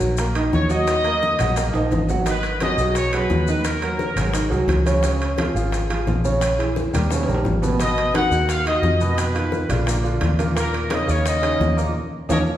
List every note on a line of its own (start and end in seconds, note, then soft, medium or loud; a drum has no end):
0.00 0.49 A#1 medium
0.00 0.12 F#3 medium
0.00 0.12 F#4 medium
0.00 0.12 F#5 medium
0.00 high conga soft
0.00 maracas medium
0.17 0.32 A#3 medium
0.17 0.33 A#4 medium
0.17 0.33 A#5 medium
0.17 high bongo medium
0.17 high conga soft
0.17 high timbale medium
0.17 maracas medium
0.35 0.64 D#3 medium
0.35 0.64 D#4 medium
0.35 0.64 D#5 medium
0.35 high bongo soft
0.35 high conga soft
0.35 high timbale medium
0.35 maracas soft
0.53 1.34 D#2 medium
0.53 0.69 C#5 loud
0.53 high bongo soft
0.53 low bongo medium
0.53 high conga medium
0.53 maracas soft
0.70 0.98 F#3 medium
0.70 0.98 F#4 medium
0.70 2.08 D#5 loud
0.70 0.98 F#5 medium
0.70 high bongo soft
0.70 maracas medium
0.87 high bongo medium
0.87 high conga soft
0.87 high timbale loud
0.87 maracas medium
1.04 1.33 A#3 medium
1.04 1.33 A#4 medium
1.04 1.33 A#5 medium
1.04 high bongo soft
1.04 high conga soft
1.04 high timbale medium
1.04 maracas soft
1.22 high bongo medium
1.22 high conga medium
1.22 maracas soft
1.39 1.72 A#1 medium
1.39 1.53 F#3 medium
1.39 1.53 F#4 medium
1.39 1.54 F#5 medium
1.39 high conga soft
1.39 low conga medium
1.39 high timbale medium
1.39 maracas medium
1.56 1.71 A#3 medium
1.56 1.71 A#4 medium
1.56 1.71 A#5 medium
1.56 high bongo medium
1.56 high conga soft
1.56 high timbale medium
1.56 maracas medium
1.74 1.90 A#1 medium
1.74 2.03 D#3 medium
1.74 2.03 D#4 medium
1.74 2.03 D#5 medium
1.74 high bongo soft
1.74 high conga soft
1.74 high timbale loud
1.74 maracas soft
1.91 2.72 G#1 medium
1.91 high bongo soft
1.91 low bongo medium
1.91 high conga medium
1.91 high timbale medium
1.91 maracas soft
2.09 2.23 F#3 medium
2.09 2.23 F#4 medium
2.09 2.24 F#5 medium
2.09 high bongo soft
2.09 high conga medium
2.09 low timbale medium
2.09 maracas medium
2.26 2.55 D#3 medium
2.26 2.55 D#4 medium
2.26 2.59 B4 loud
2.26 2.55 D#5 medium
2.26 high bongo medium
2.26 high conga soft
2.26 high timbale medium
2.26 maracas medium
2.43 high bongo soft
2.43 high conga soft
2.43 high timbale medium
2.43 maracas soft
2.60 2.75 F#3 medium
2.60 2.76 F#4 medium
2.60 2.75 G#4 medium
2.60 2.93 D#5 loud
2.60 high bongo medium
2.60 high conga medium
2.60 high timbale medium
2.60 maracas soft
2.78 3.26 B1 medium
2.78 3.08 F#3 medium
2.78 3.08 F#4 medium
2.78 3.08 G#4 medium
2.78 high conga soft
2.78 maracas medium
2.95 3.12 C#5 loud
2.95 high bongo medium
2.95 high conga soft
2.95 high timbale medium
2.95 maracas medium
3.13 3.41 F#3 medium
3.13 3.42 F#4 medium
3.13 3.42 G#4 medium
3.13 3.65 B4 loud
3.13 high bongo soft
3.13 high conga soft
3.13 high timbale medium
3.13 maracas soft
3.30 4.11 D#2 medium
3.30 high bongo soft
3.30 low bongo medium
3.30 high conga medium
3.30 low timbale medium
3.30 maracas soft
3.47 3.76 D#3 medium
3.47 3.76 D#4 medium
3.47 3.76 D#5 medium
3.47 high bongo soft
3.47 high conga medium
3.47 maracas medium
3.65 4.69 A#4 medium
3.65 high bongo medium
3.65 high conga soft
3.65 high timbale medium
3.65 maracas medium
3.82 4.11 F#3 medium
3.82 4.11 F#4 medium
3.82 4.11 A#4 medium
3.82 high bongo soft
3.82 high conga soft
3.82 high timbale medium
3.82 maracas soft
3.99 high bongo medium
3.99 high conga medium
3.99 maracas soft
4.16 4.48 G#1 medium
4.16 4.31 F#3 medium
4.16 4.31 F#4 medium
4.16 4.31 G#4 medium
4.16 high conga soft
4.16 low conga medium
4.16 high timbale medium
4.16 maracas medium
4.33 4.48 D#3 medium
4.33 4.48 D#4 medium
4.33 4.48 D#5 medium
4.33 high bongo medium
4.33 high conga soft
4.33 high timbale medium
4.33 maracas medium
4.50 4.67 C2 medium
4.50 4.79 F#3 medium
4.50 4.79 F#4 medium
4.50 4.79 G#4 medium
4.50 high bongo soft
4.50 high conga soft
4.50 maracas soft
4.67 5.49 C#2 loud
4.67 high bongo soft
4.67 low bongo medium
4.67 high conga medium
4.67 high timbale medium
4.67 maracas soft
4.86 5.00 C#3 medium
4.86 5.00 C#4 medium
4.86 5.00 C#5 medium
4.86 high bongo soft
4.86 high conga medium
4.86 high timbale medium
4.86 maracas medium
5.03 5.32 C#3 medium
5.03 5.32 C#4 medium
5.03 5.32 C#5 medium
5.03 high bongo medium
5.03 high conga soft
5.03 high timbale medium
5.03 maracas medium
5.20 high bongo soft
5.20 high conga soft
5.20 high timbale medium
5.20 maracas soft
5.38 5.52 F3 medium
5.38 5.53 F4 medium
5.38 5.53 G#4 medium
5.38 high bongo medium
5.38 high conga loud
5.38 high timbale loud
5.38 maracas soft
5.54 6.03 G#1 medium
5.54 5.83 F3 medium
5.54 5.84 F4 medium
5.54 5.84 G#4 medium
5.54 high conga soft
5.54 maracas medium
5.72 high bongo medium
5.72 high conga soft
5.72 high timbale medium
5.72 maracas medium
5.90 6.18 F3 medium
5.90 6.18 F4 medium
5.90 6.18 G#4 medium
5.90 high bongo soft
5.90 high conga soft
5.90 high timbale loud
5.90 maracas soft
6.06 6.87 A#1 loud
6.06 high bongo soft
6.06 low bongo medium
6.06 high conga medium
6.06 low timbale medium
6.06 maracas soft
6.24 6.53 C#3 medium
6.24 6.53 C#4 medium
6.24 6.53 C#5 medium
6.24 high bongo soft
6.24 high conga medium
6.24 maracas medium
6.41 high bongo medium
6.41 high conga soft
6.41 high timbale medium
6.41 maracas medium
6.59 6.87 E3 medium
6.59 6.87 E4 medium
6.59 6.87 G#4 medium
6.59 high bongo soft
6.59 high conga soft
6.59 high timbale medium
6.59 maracas soft
6.76 high bongo medium
6.76 high conga medium
6.76 maracas soft
6.93 7.26 D#2 medium
6.93 7.08 G3 medium
6.93 7.07 G4 medium
6.93 7.08 A#4 medium
6.93 high conga soft
6.93 low conga medium
6.93 high timbale loud
6.93 maracas medium
7.11 7.25 C#3 medium
7.11 7.25 C#4 medium
7.11 7.26 C#5 medium
7.11 high bongo medium
7.11 high conga soft
7.11 high timbale medium
7.11 maracas medium
7.23 high timbale medium
7.28 7.44 A#1 medium
7.28 7.56 G3 medium
7.28 7.56 G4 medium
7.28 7.56 A#4 medium
7.28 high bongo soft
7.28 high conga soft
7.28 maracas soft
7.34 high timbale medium
7.45 8.26 G#1 medium
7.45 high bongo soft
7.45 low bongo medium
7.45 high conga medium
7.45 maracas soft
7.62 7.76 B2 medium
7.62 7.77 B3 medium
7.62 7.77 B4 medium
7.62 high bongo soft
7.62 high conga medium
7.62 maracas medium
7.68 low timbale medium
7.80 8.08 B2 medium
7.80 8.08 B3 medium
7.80 8.08 B4 medium
7.80 8.13 D#5 loud
7.80 high bongo medium
7.80 high conga soft
7.80 high timbale medium
7.80 maracas medium
7.97 high bongo soft
7.97 high conga soft
7.97 high timbale medium
7.97 maracas soft
8.14 8.28 D#3 medium
8.14 8.28 D#4 medium
8.14 8.29 F#4 medium
8.14 8.47 F#5 loud
8.14 high bongo medium
8.14 high conga loud
8.14 high timbale medium
8.14 maracas soft
8.31 8.79 D#2 medium
8.31 8.60 D#3 medium
8.31 8.60 D#4 medium
8.31 8.60 F#4 medium
8.31 high conga soft
8.31 maracas medium
8.49 8.65 F5 loud
8.49 high bongo medium
8.49 high conga soft
8.49 high timbale medium
8.49 maracas medium
8.66 8.94 D#3 medium
8.66 8.94 D#4 medium
8.66 8.95 F#4 medium
8.66 9.15 D#5 loud
8.66 high bongo soft
8.66 high timbale loud
8.66 maracas soft
8.83 9.64 F2 loud
8.83 high bongo soft
8.83 low bongo medium
8.83 high conga medium
8.83 maracas soft
9.01 9.29 B2 medium
9.01 9.29 B3 medium
9.01 9.30 B4 medium
9.01 high bongo soft
9.01 maracas medium
9.18 9.83 B4 medium
9.18 high bongo medium
9.18 high conga soft
9.18 high timbale medium
9.18 maracas medium
9.34 9.63 D#3 medium
9.34 9.63 D#4 medium
9.34 9.64 F4 medium
9.34 high bongo soft
9.34 high conga soft
9.34 high timbale medium
9.34 maracas soft
9.52 high bongo medium
9.52 high conga medium
9.52 maracas soft
9.69 10.18 A#1 medium
9.69 9.84 D3 medium
9.69 9.84 D4 medium
9.69 9.84 F4 medium
9.69 high conga soft
9.69 low conga medium
9.69 high timbale medium
9.69 maracas medium
9.86 10.01 A#2 medium
9.86 10.01 A#3 medium
9.86 10.01 A#4 medium
9.86 high bongo medium
9.86 high conga soft
9.86 high timbale medium
9.86 maracas loud
10.04 10.32 D3 medium
10.04 10.33 D4 medium
10.04 10.33 F4 medium
10.04 high bongo soft
10.04 high conga soft
10.04 maracas soft
10.21 11.03 D#2 loud
10.21 high bongo soft
10.21 low bongo medium
10.21 high conga medium
10.21 high timbale medium
10.21 maracas soft
10.39 10.53 A#2 medium
10.39 10.53 A#3 medium
10.39 10.53 A#4 medium
10.39 high bongo soft
10.39 high conga medium
10.39 high timbale medium
10.39 maracas medium
10.55 10.84 A#2 medium
10.55 10.84 A#3 medium
10.55 10.85 A#4 medium
10.55 10.90 A#4 loud
10.55 high bongo medium
10.55 high conga soft
10.55 high timbale medium
10.55 maracas medium
10.73 high bongo soft
10.73 high conga soft
10.73 high timbale medium
10.73 maracas soft
10.90 11.05 C#3 medium
10.90 11.05 C#4 medium
10.90 11.05 D#4 medium
10.90 11.09 D#5 loud
10.90 high bongo medium
10.90 high conga loud
10.90 high timbale medium
10.90 maracas soft
11.08 11.57 D#2 medium
11.08 11.37 C#3 medium
11.08 11.37 C#4 medium
11.08 11.37 D#4 medium
11.08 11.27 C#5 loud
11.08 high conga soft
11.08 maracas medium
11.26 11.92 D#5 loud
11.26 high bongo medium
11.26 high conga soft
11.26 high timbale medium
11.26 maracas medium
11.41 11.71 C#3 medium
11.41 11.71 C#4 medium
11.41 11.71 D#4 medium
11.41 high bongo soft
11.41 high conga soft
11.41 high timbale loud
11.41 maracas soft
11.60 11.92 D#2 medium
11.60 high bongo soft
11.60 low bongo medium
11.60 high conga medium
11.60 low timbale medium
11.60 maracas soft
11.77 11.91 A#2 medium
11.77 11.92 A#3 medium
11.77 11.92 A#4 medium
11.77 high bongo soft
11.77 maracas medium
12.29 12.42 D#2 medium
12.29 12.40 A#3 loud
12.29 12.40 C#4 medium
12.29 12.40 D#4 loud
12.29 12.38 A#4 medium
12.29 12.38 C#5 loud
12.29 12.38 D#5 medium
12.29 low bongo medium
12.29 high conga loud
12.29 high timbale loud
12.29 maracas loud